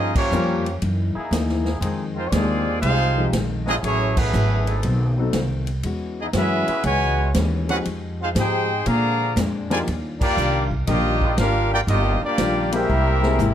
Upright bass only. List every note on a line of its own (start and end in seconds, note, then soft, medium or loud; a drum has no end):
0.00 0.30 G2 medium
0.31 0.80 F2 loud
0.82 1.13 F#2 loud
1.16 muted upright bass stroke soft
1.31 1.80 D#2 medium
1.81 2.30 F2 medium
2.32 2.81 D#2 loud
2.82 3.31 C2 loud
3.33 3.81 A#1 medium
3.83 4.31 A1 medium
4.34 4.82 G#1 loud
4.84 5.33 B1 loud
5.34 5.83 C2 medium
5.84 6.32 E2 medium
6.34 6.65 F#2 loud
6.68 muted upright bass stroke soft
6.84 7.33 C#2 loud
7.35 7.84 D#2 medium
7.86 8.34 F2 medium
8.35 8.84 G#2 medium
8.87 9.35 A#2 loud
9.36 9.85 F2 loud
9.88 10.36 D#2 medium
10.37 10.86 C2 loud
10.88 11.36 A#1 loud
11.37 11.86 G#1 medium
11.87 12.19 G1 medium
12.22 muted upright bass stroke soft
12.38 12.87 A#1 medium
12.89 13.38 C2 loud
13.39 13.54 G#1 medium